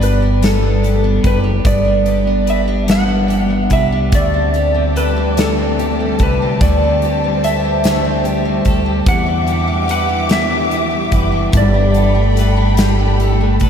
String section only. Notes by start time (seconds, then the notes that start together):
4.14 G4 D5 A5
6.61 C5
9.06 G4 E5 D6
11.56 A4 G5 B5